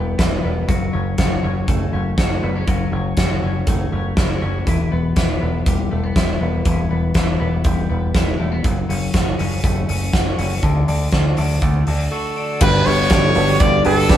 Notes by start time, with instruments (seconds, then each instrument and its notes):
Already playing: picked electric bass E1, clean electric guitar E3 G3 B3 E4
0.18 picked electric bass E1, clean electric guitar E4, kick, snare, closed hi-hat
0.43 picked electric bass E1, clean electric guitar B3
0.68 picked electric bass F#1, clean electric guitar F#3, kick, closed hi-hat
0.93 picked electric bass F#1, clean electric guitar C#4
1.18 picked electric bass F#1, clean electric guitar F#4, kick, snare, closed hi-hat
1.43 picked electric bass F#1, clean electric guitar C#4
1.68 picked electric bass F#1, clean electric guitar A3, kick, closed hi-hat
1.93 picked electric bass F#1, clean electric guitar C#4
2.18 picked electric bass F#1, clean electric guitar F#4, kick, snare, closed hi-hat
2.43 picked electric bass F#1, clean electric guitar B3
2.56 clean electric guitar C#4
2.67 picked electric bass F#1, clean electric guitar F#3, kick, closed hi-hat
2.92 picked electric bass F#1, clean electric guitar C#4
3.17 picked electric bass F#1, clean electric guitar F#4, kick, snare, closed hi-hat
3.43 picked electric bass F#1, clean electric guitar C#4
3.67 picked electric bass F#1, clean electric guitar A3, kick, closed hi-hat
3.92 picked electric bass F#1, clean electric guitar C#4
4.17 picked electric bass F#1, clean electric guitar E4, kick, snare, closed hi-hat
4.30 clean electric guitar F#4
4.42 picked electric bass F#1, clean electric guitar C#4
4.67 picked electric bass E1, clean electric guitar E3, kick, closed hi-hat
4.92 picked electric bass E1, clean electric guitar B3
5.16 picked electric bass E1, clean electric guitar E4, kick, snare, closed hi-hat
5.41 picked electric bass E1, clean electric guitar B3
5.66 picked electric bass E1, clean electric guitar G3, kick, closed hi-hat
5.91 picked electric bass E1, clean electric guitar A3
6.04 clean electric guitar B3
6.16 picked electric bass E1, clean electric guitar E4, kick, snare, closed hi-hat
6.41 picked electric bass E1, clean electric guitar B3
6.65 picked electric bass E1, clean electric guitar E3, kick, closed hi-hat
6.91 picked electric bass E1, clean electric guitar B3
7.14 picked electric bass E1, clean electric guitar E4, kick, snare, closed hi-hat
7.40 picked electric bass E1, clean electric guitar B3
7.64 picked electric bass E1, clean electric guitar G3, kick, closed hi-hat
7.90 picked electric bass E1, clean electric guitar B3
8.15 picked electric bass E1, clean electric guitar E4, kick, snare, closed hi-hat
8.40 picked electric bass E1, clean electric guitar A3
8.52 clean electric guitar B3
8.64 picked electric bass F#1, clean electric guitar F#2, kick, closed hi-hat
8.89 picked electric bass F#1, clean electric guitar C#4, open hi-hat
9.14 picked electric bass F#1, clean electric guitar F#4, kick, snare, closed hi-hat
9.39 picked electric bass F#1, clean electric guitar C#4, open hi-hat
9.64 picked electric bass F#1, clean electric guitar A3, kick, closed hi-hat
9.89 picked electric bass F#1, clean electric guitar C#4, open hi-hat
10.13 picked electric bass F#1, clean electric guitar F#4, kick, snare, closed hi-hat
10.38 picked electric bass F#1, clean electric guitar C#4, open hi-hat
10.63 picked electric bass D2, clean electric guitar D3, kick, closed hi-hat
10.88 picked electric bass D2, clean electric guitar D4, open hi-hat
11.12 picked electric bass D2, clean electric guitar F#4, kick, snare, closed hi-hat
11.37 picked electric bass D2, clean electric guitar D4, open hi-hat
11.62 picked electric bass D2, clean electric guitar A3, kick, closed hi-hat
11.87 picked electric bass D2, clean electric guitar D4, open hi-hat
12.11 clean electric guitar F#4, trumpet A4
12.37 clean electric guitar D4
12.61 picked electric bass G1, clean electric guitar G2 D4, reed electric piano D4 F#4 G4 B4, trumpet B4, kick, crash
12.86 picked electric bass G1, clean electric guitar B3, reed electric piano D4 F#4 G4 B4, trumpet C#5, open hi-hat
13.10 picked electric bass G1, reed electric piano D4 F#4 G4 A4, clean electric guitar D4, kick, snare, hi-hat pedal, ride
13.35 picked electric bass G1, clean electric guitar B3, reed electric piano D4 F#4 G4 B4, open hi-hat
13.60 picked electric bass G1, clean electric guitar D3, reed electric piano D4 F#4 G4 B4, trumpet D5, kick, hi-hat pedal, ride
13.85 picked electric bass G1, clean electric guitar D4, reed electric piano D4 F#4 G4 B4, trumpet A4, open hi-hat
14.09 picked electric bass G1, clean electric guitar B3, reed electric piano D4 F#4 G4 B4, kick, snare, hi-hat pedal, ride